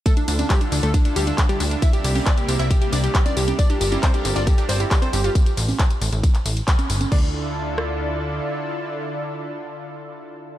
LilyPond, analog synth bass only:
\new Staff \with { instrumentName = "Analog synth bass" } { \clef bass \time 4/4 \key d \minor \tempo 4 = 136 r8 d,16 r8. d,16 d,16 r8 d,16 r8. d,16 r16 | r8 c,16 r8. c,16 c,16 r8 c,16 r8. c,16 r16 | r8 g,,16 r8. g,,16 g,,16 r8 g,,16 r8. g,,16 r16 | r8 a,,16 r8. a,,16 a,,16 r8 a,,16 r8. g,,16 r16 |
d,2. r4 | r1 | }